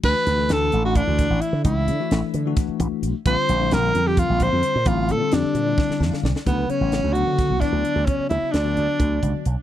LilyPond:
<<
  \new Staff \with { instrumentName = "Flute" } { \time 7/8 \key d \major \tempo 4 = 131 r2. r8 | r2. r8 | r2. r8 | r2. r8 |
b'8 cis''4 fis''4 d''4 | cis''8 e''8 d''2 r8 | }
  \new Staff \with { instrumentName = "Tenor saxophone" } { \time 7/8 \key d \major b'4 a'8. fis'16 d'4 e'8 | e'4. r2 | c''4 bes'8. g'16 f'8 c''4 | f'8 a'8 d'2 r8 |
b8 cis'4 fis'4 d'4 | cis'8 e'8 d'2 r8 | }
  \new Staff \with { instrumentName = "Tine electric piano" } { \time 7/8 \key d \major r2. r8 | r2. r8 | r2. r8 | r2 r8 a''16 f''16 d''8 |
r2. r8 | r2. r8 | }
  \new Staff \with { instrumentName = "Tine electric piano" } { \time 7/8 \key d \major <e a d' fis'>8. <e a d' a'>16 <e a d' a'>8. <e a d' e'>4. r16 | <e a d' e'>8. <e a d' fis'>16 <e a d' a'>8. <e a d' fis'>4. r16 | <d g c' f'>8. <d g c' e'>16 <d g c' f'>8. <d g c' f'>4. r16 | <d g c' f'>8. <d g c' f'>16 <d g c' g'>8. <d g c' e'>4. r16 |
<cis fis b e'>8 <cis fis b cis'>8. r16 <cis fis b d'>8. <cis fis b e'>16 <d fis b e'>8. r16 | <cis fis b fis'>4 r16 <d fis b fis'>4.~ <d fis b fis'>16 r8 | }
  \new Staff \with { instrumentName = "Slap bass" } { \clef bass \time 7/8 \key d \major d,16 r16 d,8 d,8 a,,8. d,8 a,,16 r16 d16 | cis,8 d16 r16 a,,16 r16 d8 r8 a,,16 r16 b,,16 r16 | bes,,16 r16 bes,,8 bes,,8 f,8. bes,,8 f,16 r16 bes,16 | a,,8 bes,16 r16 f,16 r16 bes,8 r8 f,16 r16 c,16 r16 |
d,8 r16 a,,8 d,8 d8 cis,16 r16 d,16 r16 d,16 | r8 d,16 r16 d,8 d,16 r16 d,8 cis,16 r16 b,,16 r16 | }
  \new DrumStaff \with { instrumentName = "Drums" } \drummode { \time 7/8 <cymc bd>8 hh8 <hh sn>8 hh8 <hh bd>8 <hh bd sn>8 hh8 | <hh bd>8 hh8 <hh sn>8 hh8 <hh bd sn>8 <hh bd>8 hh8 | <hh bd>8 hh8 <hh sn>8 hh8 <hh bd>8 <hh bd>8 hh8 | <hh bd>8 hh8 <hh sn>8 hh8 <bd sn>16 sn16 sn16 sn16 sn16 sn16 |
<hh bd>8 hh8 <hh sn>8 hh8 <hh bd sn>8 <hh bd sn>8 hh8 | <hh bd>8 hh8 <hh sn>8 hh8 <hh bd>8 <hh bd>8 hh8 | }
>>